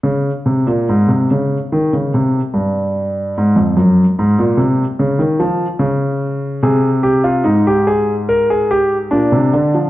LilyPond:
\new Staff \with { instrumentName = "Grand piano" } { \clef bass \time 4/4 \key aes \mixolydian \tempo 4 = 73 << { des8 c16 bes,16 aes,16 c16 des8 ees16 des16 c8 g,4 | aes,16 f,16 ges,8 aes,16 bes,16 c8 des16 ees16 f8 des4 | aes'8 g'16 f'16 ees'16 g'16 aes'8 bes'16 aes'16 g'8 d'4 | } \\ { r1 | r1 | c4 aes,2 bes,16 c16 d16 f16 | } >> }